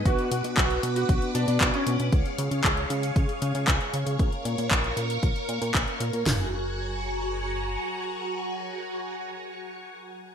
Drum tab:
HH |xxxxxxxxxxxxxxxx|xxxxxxxxxxxxxxxx|xxxxxxxxxxxxxxxx|o---------------|
CP |----x-------x---|----x-------x---|----x-------x---|----------------|
SD |----------------|----------------|----------------|o---------------|
FT |----------------|----------------|----------------|o---------------|
BD |o---o---o---o---|o---o---o---o---|o---o---o---o---|----------------|

HH |----------------|
CP |----------------|
SD |----------------|
FT |----------------|
BD |----------------|